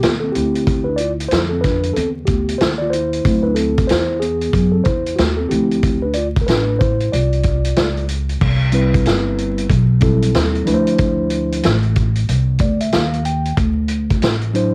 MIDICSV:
0, 0, Header, 1, 4, 480
1, 0, Start_track
1, 0, Tempo, 645161
1, 501, Time_signature, 4, 2, 24, 8
1, 10970, End_track
2, 0, Start_track
2, 0, Title_t, "Tine electric piano"
2, 0, Program_c, 0, 4
2, 25, Note_on_c, 0, 59, 62
2, 92, Note_off_c, 0, 59, 0
2, 149, Note_on_c, 0, 69, 76
2, 180, Note_on_c, 0, 60, 62
2, 239, Note_on_c, 0, 67, 83
2, 253, Note_off_c, 0, 69, 0
2, 254, Note_off_c, 0, 60, 0
2, 258, Note_on_c, 0, 50, 52
2, 263, Note_on_c, 0, 60, 65
2, 267, Note_on_c, 0, 64, 61
2, 629, Note_off_c, 0, 60, 0
2, 629, Note_on_c, 0, 71, 79
2, 653, Note_off_c, 0, 67, 0
2, 659, Note_on_c, 0, 62, 60
2, 718, Note_on_c, 0, 74, 93
2, 732, Note_off_c, 0, 71, 0
2, 738, Note_off_c, 0, 62, 0
2, 747, Note_on_c, 0, 65, 69
2, 831, Note_off_c, 0, 74, 0
2, 854, Note_off_c, 0, 65, 0
2, 958, Note_on_c, 0, 72, 91
2, 977, Note_off_c, 0, 64, 0
2, 985, Note_on_c, 0, 64, 70
2, 1031, Note_off_c, 0, 72, 0
2, 1052, Note_off_c, 0, 64, 0
2, 1109, Note_on_c, 0, 69, 71
2, 1136, Note_on_c, 0, 60, 60
2, 1198, Note_on_c, 0, 71, 84
2, 1212, Note_off_c, 0, 69, 0
2, 1217, Note_off_c, 0, 60, 0
2, 1227, Note_on_c, 0, 62, 66
2, 1441, Note_on_c, 0, 69, 83
2, 1448, Note_off_c, 0, 62, 0
2, 1457, Note_off_c, 0, 71, 0
2, 1468, Note_on_c, 0, 60, 66
2, 1553, Note_off_c, 0, 69, 0
2, 1574, Note_off_c, 0, 60, 0
2, 1677, Note_on_c, 0, 67, 72
2, 1707, Note_on_c, 0, 59, 54
2, 1922, Note_on_c, 0, 72, 79
2, 1927, Note_off_c, 0, 59, 0
2, 1937, Note_off_c, 0, 67, 0
2, 1948, Note_on_c, 0, 64, 68
2, 1994, Note_off_c, 0, 72, 0
2, 2014, Note_off_c, 0, 64, 0
2, 2070, Note_on_c, 0, 74, 87
2, 2097, Note_on_c, 0, 65, 69
2, 2150, Note_off_c, 0, 50, 0
2, 2158, Note_on_c, 0, 72, 88
2, 2173, Note_off_c, 0, 74, 0
2, 2177, Note_off_c, 0, 65, 0
2, 2187, Note_on_c, 0, 64, 73
2, 2412, Note_off_c, 0, 64, 0
2, 2414, Note_on_c, 0, 54, 51
2, 2418, Note_on_c, 0, 60, 45
2, 2421, Note_on_c, 0, 64, 57
2, 2549, Note_on_c, 0, 71, 83
2, 2573, Note_off_c, 0, 72, 0
2, 2576, Note_on_c, 0, 62, 61
2, 2638, Note_on_c, 0, 69, 81
2, 2643, Note_off_c, 0, 71, 0
2, 2656, Note_off_c, 0, 60, 0
2, 2657, Note_off_c, 0, 62, 0
2, 2665, Note_on_c, 0, 60, 62
2, 2760, Note_off_c, 0, 54, 0
2, 2763, Note_off_c, 0, 64, 0
2, 2880, Note_on_c, 0, 72, 82
2, 2886, Note_off_c, 0, 60, 0
2, 2897, Note_off_c, 0, 69, 0
2, 2904, Note_on_c, 0, 64, 65
2, 3122, Note_on_c, 0, 68, 90
2, 3126, Note_off_c, 0, 64, 0
2, 3138, Note_off_c, 0, 72, 0
2, 3144, Note_on_c, 0, 59, 67
2, 3506, Note_off_c, 0, 59, 0
2, 3511, Note_on_c, 0, 69, 72
2, 3534, Note_off_c, 0, 68, 0
2, 3535, Note_on_c, 0, 60, 59
2, 3599, Note_on_c, 0, 72, 77
2, 3613, Note_off_c, 0, 69, 0
2, 3616, Note_off_c, 0, 60, 0
2, 3623, Note_on_c, 0, 64, 58
2, 3837, Note_on_c, 0, 66, 69
2, 3845, Note_off_c, 0, 64, 0
2, 3857, Note_off_c, 0, 72, 0
2, 3862, Note_on_c, 0, 57, 54
2, 3989, Note_off_c, 0, 66, 0
2, 3992, Note_on_c, 0, 69, 73
2, 4002, Note_off_c, 0, 57, 0
2, 4017, Note_on_c, 0, 60, 60
2, 4083, Note_on_c, 0, 67, 77
2, 4089, Note_off_c, 0, 60, 0
2, 4094, Note_off_c, 0, 69, 0
2, 4096, Note_on_c, 0, 53, 56
2, 4098, Note_on_c, 0, 60, 66
2, 4104, Note_on_c, 0, 64, 61
2, 4441, Note_off_c, 0, 53, 0
2, 4445, Note_off_c, 0, 64, 0
2, 4466, Note_off_c, 0, 60, 0
2, 4480, Note_on_c, 0, 71, 73
2, 4495, Note_off_c, 0, 67, 0
2, 4502, Note_on_c, 0, 62, 63
2, 4568, Note_on_c, 0, 74, 87
2, 4578, Note_off_c, 0, 71, 0
2, 4580, Note_off_c, 0, 62, 0
2, 4590, Note_on_c, 0, 65, 66
2, 4662, Note_off_c, 0, 74, 0
2, 4679, Note_off_c, 0, 65, 0
2, 4772, Note_on_c, 0, 70, 61
2, 4811, Note_on_c, 0, 71, 87
2, 4816, Note_off_c, 0, 70, 0
2, 4830, Note_on_c, 0, 62, 65
2, 5049, Note_off_c, 0, 62, 0
2, 5052, Note_on_c, 0, 72, 81
2, 5063, Note_off_c, 0, 71, 0
2, 5072, Note_on_c, 0, 64, 62
2, 5290, Note_off_c, 0, 64, 0
2, 5299, Note_on_c, 0, 74, 78
2, 5304, Note_off_c, 0, 72, 0
2, 5317, Note_on_c, 0, 65, 64
2, 5990, Note_off_c, 0, 74, 0
2, 5999, Note_off_c, 0, 65, 0
2, 6490, Note_on_c, 0, 55, 79
2, 6495, Note_on_c, 0, 60, 78
2, 6501, Note_on_c, 0, 64, 80
2, 6506, Note_on_c, 0, 71, 86
2, 7180, Note_off_c, 0, 55, 0
2, 7182, Note_off_c, 0, 60, 0
2, 7185, Note_off_c, 0, 64, 0
2, 7188, Note_off_c, 0, 71, 0
2, 7447, Note_on_c, 0, 55, 72
2, 7453, Note_on_c, 0, 60, 68
2, 7457, Note_on_c, 0, 64, 71
2, 7462, Note_on_c, 0, 69, 81
2, 7925, Note_on_c, 0, 53, 89
2, 7929, Note_off_c, 0, 64, 0
2, 7933, Note_on_c, 0, 62, 84
2, 7934, Note_off_c, 0, 55, 0
2, 7937, Note_off_c, 0, 60, 0
2, 7937, Note_on_c, 0, 64, 78
2, 7942, Note_off_c, 0, 69, 0
2, 7942, Note_on_c, 0, 71, 75
2, 7991, Note_on_c, 0, 72, 97
2, 8002, Note_off_c, 0, 71, 0
2, 8713, Note_off_c, 0, 53, 0
2, 8717, Note_off_c, 0, 62, 0
2, 8720, Note_off_c, 0, 64, 0
2, 8746, Note_off_c, 0, 72, 0
2, 9377, Note_on_c, 0, 74, 60
2, 9519, Note_off_c, 0, 74, 0
2, 9528, Note_on_c, 0, 76, 63
2, 9613, Note_off_c, 0, 76, 0
2, 9621, Note_on_c, 0, 77, 64
2, 9844, Note_off_c, 0, 77, 0
2, 9861, Note_on_c, 0, 79, 71
2, 10084, Note_off_c, 0, 79, 0
2, 10814, Note_on_c, 0, 54, 80
2, 10820, Note_on_c, 0, 62, 75
2, 10826, Note_on_c, 0, 64, 76
2, 10830, Note_on_c, 0, 72, 89
2, 10970, Note_off_c, 0, 54, 0
2, 10970, Note_off_c, 0, 62, 0
2, 10970, Note_off_c, 0, 64, 0
2, 10970, Note_off_c, 0, 72, 0
2, 10970, End_track
3, 0, Start_track
3, 0, Title_t, "Upright bass"
3, 0, Program_c, 1, 32
3, 20, Note_on_c, 1, 39, 72
3, 248, Note_off_c, 1, 39, 0
3, 265, Note_on_c, 1, 38, 79
3, 953, Note_off_c, 1, 38, 0
3, 983, Note_on_c, 1, 41, 100
3, 1438, Note_off_c, 1, 41, 0
3, 1462, Note_on_c, 1, 40, 84
3, 1689, Note_off_c, 1, 40, 0
3, 1698, Note_on_c, 1, 38, 79
3, 1927, Note_off_c, 1, 38, 0
3, 1942, Note_on_c, 1, 39, 82
3, 2397, Note_off_c, 1, 39, 0
3, 2420, Note_on_c, 1, 38, 99
3, 2877, Note_off_c, 1, 38, 0
3, 2909, Note_on_c, 1, 40, 99
3, 3361, Note_off_c, 1, 40, 0
3, 3374, Note_on_c, 1, 42, 84
3, 3605, Note_off_c, 1, 42, 0
3, 3618, Note_on_c, 1, 40, 75
3, 3847, Note_off_c, 1, 40, 0
3, 3861, Note_on_c, 1, 39, 78
3, 4089, Note_off_c, 1, 39, 0
3, 4101, Note_on_c, 1, 38, 85
3, 4791, Note_off_c, 1, 38, 0
3, 4823, Note_on_c, 1, 33, 88
3, 5278, Note_off_c, 1, 33, 0
3, 5306, Note_on_c, 1, 36, 87
3, 5759, Note_off_c, 1, 36, 0
3, 5786, Note_on_c, 1, 37, 86
3, 6239, Note_off_c, 1, 37, 0
3, 6261, Note_on_c, 1, 36, 96
3, 6717, Note_off_c, 1, 36, 0
3, 6748, Note_on_c, 1, 31, 91
3, 7200, Note_off_c, 1, 31, 0
3, 7216, Note_on_c, 1, 35, 101
3, 7674, Note_off_c, 1, 35, 0
3, 7702, Note_on_c, 1, 39, 83
3, 7930, Note_off_c, 1, 39, 0
3, 7943, Note_on_c, 1, 38, 87
3, 8632, Note_off_c, 1, 38, 0
3, 8664, Note_on_c, 1, 33, 98
3, 9119, Note_off_c, 1, 33, 0
3, 9142, Note_on_c, 1, 36, 92
3, 9369, Note_off_c, 1, 36, 0
3, 9374, Note_on_c, 1, 38, 81
3, 9605, Note_off_c, 1, 38, 0
3, 9626, Note_on_c, 1, 39, 89
3, 10080, Note_off_c, 1, 39, 0
3, 10099, Note_on_c, 1, 38, 99
3, 10556, Note_off_c, 1, 38, 0
3, 10583, Note_on_c, 1, 33, 86
3, 10970, Note_off_c, 1, 33, 0
3, 10970, End_track
4, 0, Start_track
4, 0, Title_t, "Drums"
4, 21, Note_on_c, 9, 42, 81
4, 25, Note_on_c, 9, 38, 112
4, 95, Note_off_c, 9, 42, 0
4, 100, Note_off_c, 9, 38, 0
4, 261, Note_on_c, 9, 42, 62
4, 336, Note_off_c, 9, 42, 0
4, 411, Note_on_c, 9, 42, 45
4, 486, Note_off_c, 9, 42, 0
4, 498, Note_on_c, 9, 42, 73
4, 499, Note_on_c, 9, 36, 98
4, 572, Note_off_c, 9, 42, 0
4, 574, Note_off_c, 9, 36, 0
4, 728, Note_on_c, 9, 42, 65
4, 802, Note_off_c, 9, 42, 0
4, 895, Note_on_c, 9, 42, 59
4, 969, Note_off_c, 9, 42, 0
4, 976, Note_on_c, 9, 42, 91
4, 988, Note_on_c, 9, 38, 108
4, 1051, Note_off_c, 9, 42, 0
4, 1063, Note_off_c, 9, 38, 0
4, 1218, Note_on_c, 9, 42, 57
4, 1222, Note_on_c, 9, 36, 81
4, 1223, Note_on_c, 9, 38, 31
4, 1293, Note_off_c, 9, 42, 0
4, 1296, Note_off_c, 9, 36, 0
4, 1298, Note_off_c, 9, 38, 0
4, 1365, Note_on_c, 9, 42, 47
4, 1439, Note_off_c, 9, 42, 0
4, 1460, Note_on_c, 9, 42, 76
4, 1534, Note_off_c, 9, 42, 0
4, 1686, Note_on_c, 9, 42, 59
4, 1695, Note_on_c, 9, 36, 77
4, 1761, Note_off_c, 9, 42, 0
4, 1769, Note_off_c, 9, 36, 0
4, 1849, Note_on_c, 9, 42, 57
4, 1923, Note_off_c, 9, 42, 0
4, 1938, Note_on_c, 9, 42, 77
4, 1943, Note_on_c, 9, 38, 108
4, 2012, Note_off_c, 9, 42, 0
4, 2017, Note_off_c, 9, 38, 0
4, 2179, Note_on_c, 9, 42, 64
4, 2254, Note_off_c, 9, 42, 0
4, 2327, Note_on_c, 9, 42, 46
4, 2402, Note_off_c, 9, 42, 0
4, 2415, Note_on_c, 9, 42, 78
4, 2417, Note_on_c, 9, 36, 105
4, 2490, Note_off_c, 9, 42, 0
4, 2492, Note_off_c, 9, 36, 0
4, 2646, Note_on_c, 9, 42, 70
4, 2721, Note_off_c, 9, 42, 0
4, 2809, Note_on_c, 9, 42, 57
4, 2813, Note_on_c, 9, 36, 94
4, 2883, Note_off_c, 9, 42, 0
4, 2887, Note_off_c, 9, 36, 0
4, 2894, Note_on_c, 9, 42, 95
4, 2906, Note_on_c, 9, 38, 104
4, 2968, Note_off_c, 9, 42, 0
4, 2980, Note_off_c, 9, 38, 0
4, 3138, Note_on_c, 9, 42, 57
4, 3212, Note_off_c, 9, 42, 0
4, 3283, Note_on_c, 9, 42, 48
4, 3357, Note_off_c, 9, 42, 0
4, 3373, Note_on_c, 9, 36, 96
4, 3381, Note_on_c, 9, 42, 70
4, 3447, Note_off_c, 9, 36, 0
4, 3455, Note_off_c, 9, 42, 0
4, 3607, Note_on_c, 9, 42, 60
4, 3615, Note_on_c, 9, 36, 77
4, 3681, Note_off_c, 9, 42, 0
4, 3689, Note_off_c, 9, 36, 0
4, 3766, Note_on_c, 9, 42, 56
4, 3841, Note_off_c, 9, 42, 0
4, 3856, Note_on_c, 9, 42, 83
4, 3861, Note_on_c, 9, 38, 99
4, 3931, Note_off_c, 9, 42, 0
4, 3935, Note_off_c, 9, 38, 0
4, 4098, Note_on_c, 9, 42, 65
4, 4173, Note_off_c, 9, 42, 0
4, 4250, Note_on_c, 9, 42, 44
4, 4324, Note_off_c, 9, 42, 0
4, 4336, Note_on_c, 9, 42, 77
4, 4338, Note_on_c, 9, 36, 99
4, 4410, Note_off_c, 9, 42, 0
4, 4412, Note_off_c, 9, 36, 0
4, 4564, Note_on_c, 9, 42, 70
4, 4638, Note_off_c, 9, 42, 0
4, 4734, Note_on_c, 9, 42, 56
4, 4735, Note_on_c, 9, 36, 93
4, 4808, Note_off_c, 9, 42, 0
4, 4809, Note_off_c, 9, 36, 0
4, 4819, Note_on_c, 9, 42, 91
4, 4831, Note_on_c, 9, 38, 101
4, 4894, Note_off_c, 9, 42, 0
4, 4906, Note_off_c, 9, 38, 0
4, 5064, Note_on_c, 9, 42, 57
4, 5065, Note_on_c, 9, 36, 82
4, 5139, Note_off_c, 9, 36, 0
4, 5139, Note_off_c, 9, 42, 0
4, 5209, Note_on_c, 9, 42, 46
4, 5284, Note_off_c, 9, 42, 0
4, 5305, Note_on_c, 9, 42, 70
4, 5379, Note_off_c, 9, 42, 0
4, 5450, Note_on_c, 9, 42, 32
4, 5524, Note_off_c, 9, 42, 0
4, 5529, Note_on_c, 9, 42, 67
4, 5537, Note_on_c, 9, 36, 81
4, 5604, Note_off_c, 9, 42, 0
4, 5611, Note_off_c, 9, 36, 0
4, 5688, Note_on_c, 9, 42, 57
4, 5763, Note_off_c, 9, 42, 0
4, 5777, Note_on_c, 9, 42, 86
4, 5781, Note_on_c, 9, 38, 97
4, 5851, Note_off_c, 9, 42, 0
4, 5856, Note_off_c, 9, 38, 0
4, 5931, Note_on_c, 9, 42, 31
4, 6006, Note_off_c, 9, 42, 0
4, 6017, Note_on_c, 9, 42, 66
4, 6091, Note_off_c, 9, 42, 0
4, 6169, Note_on_c, 9, 42, 43
4, 6244, Note_off_c, 9, 42, 0
4, 6259, Note_on_c, 9, 49, 85
4, 6260, Note_on_c, 9, 36, 102
4, 6333, Note_off_c, 9, 49, 0
4, 6334, Note_off_c, 9, 36, 0
4, 6487, Note_on_c, 9, 42, 69
4, 6562, Note_off_c, 9, 42, 0
4, 6653, Note_on_c, 9, 42, 59
4, 6654, Note_on_c, 9, 36, 85
4, 6727, Note_off_c, 9, 42, 0
4, 6729, Note_off_c, 9, 36, 0
4, 6738, Note_on_c, 9, 42, 92
4, 6750, Note_on_c, 9, 38, 101
4, 6812, Note_off_c, 9, 42, 0
4, 6824, Note_off_c, 9, 38, 0
4, 6982, Note_on_c, 9, 42, 58
4, 7057, Note_off_c, 9, 42, 0
4, 7127, Note_on_c, 9, 42, 50
4, 7201, Note_off_c, 9, 42, 0
4, 7214, Note_on_c, 9, 36, 91
4, 7221, Note_on_c, 9, 42, 73
4, 7288, Note_off_c, 9, 36, 0
4, 7296, Note_off_c, 9, 42, 0
4, 7446, Note_on_c, 9, 42, 66
4, 7455, Note_on_c, 9, 36, 81
4, 7520, Note_off_c, 9, 42, 0
4, 7530, Note_off_c, 9, 36, 0
4, 7607, Note_on_c, 9, 42, 53
4, 7682, Note_off_c, 9, 42, 0
4, 7697, Note_on_c, 9, 42, 85
4, 7702, Note_on_c, 9, 38, 105
4, 7771, Note_off_c, 9, 42, 0
4, 7776, Note_off_c, 9, 38, 0
4, 7849, Note_on_c, 9, 42, 34
4, 7924, Note_off_c, 9, 42, 0
4, 7936, Note_on_c, 9, 42, 64
4, 8010, Note_off_c, 9, 42, 0
4, 8085, Note_on_c, 9, 42, 45
4, 8159, Note_off_c, 9, 42, 0
4, 8170, Note_on_c, 9, 42, 75
4, 8176, Note_on_c, 9, 36, 108
4, 8245, Note_off_c, 9, 42, 0
4, 8250, Note_off_c, 9, 36, 0
4, 8407, Note_on_c, 9, 42, 69
4, 8481, Note_off_c, 9, 42, 0
4, 8574, Note_on_c, 9, 42, 59
4, 8648, Note_off_c, 9, 42, 0
4, 8656, Note_on_c, 9, 42, 90
4, 8668, Note_on_c, 9, 38, 108
4, 8730, Note_off_c, 9, 42, 0
4, 8742, Note_off_c, 9, 38, 0
4, 8799, Note_on_c, 9, 42, 30
4, 8873, Note_off_c, 9, 42, 0
4, 8895, Note_on_c, 9, 42, 60
4, 8900, Note_on_c, 9, 36, 86
4, 8970, Note_off_c, 9, 42, 0
4, 8974, Note_off_c, 9, 36, 0
4, 9043, Note_on_c, 9, 42, 50
4, 9117, Note_off_c, 9, 42, 0
4, 9140, Note_on_c, 9, 42, 71
4, 9215, Note_off_c, 9, 42, 0
4, 9363, Note_on_c, 9, 42, 62
4, 9373, Note_on_c, 9, 36, 84
4, 9437, Note_off_c, 9, 42, 0
4, 9448, Note_off_c, 9, 36, 0
4, 9525, Note_on_c, 9, 42, 54
4, 9600, Note_off_c, 9, 42, 0
4, 9615, Note_on_c, 9, 42, 86
4, 9619, Note_on_c, 9, 38, 99
4, 9689, Note_off_c, 9, 42, 0
4, 9694, Note_off_c, 9, 38, 0
4, 9772, Note_on_c, 9, 42, 34
4, 9846, Note_off_c, 9, 42, 0
4, 9857, Note_on_c, 9, 42, 70
4, 9932, Note_off_c, 9, 42, 0
4, 10010, Note_on_c, 9, 42, 45
4, 10085, Note_off_c, 9, 42, 0
4, 10097, Note_on_c, 9, 42, 83
4, 10098, Note_on_c, 9, 36, 104
4, 10171, Note_off_c, 9, 42, 0
4, 10173, Note_off_c, 9, 36, 0
4, 10328, Note_on_c, 9, 42, 72
4, 10402, Note_off_c, 9, 42, 0
4, 10492, Note_on_c, 9, 42, 58
4, 10494, Note_on_c, 9, 36, 93
4, 10567, Note_off_c, 9, 42, 0
4, 10568, Note_off_c, 9, 36, 0
4, 10579, Note_on_c, 9, 42, 92
4, 10591, Note_on_c, 9, 38, 114
4, 10653, Note_off_c, 9, 42, 0
4, 10666, Note_off_c, 9, 38, 0
4, 10723, Note_on_c, 9, 42, 33
4, 10798, Note_off_c, 9, 42, 0
4, 10823, Note_on_c, 9, 42, 59
4, 10897, Note_off_c, 9, 42, 0
4, 10970, End_track
0, 0, End_of_file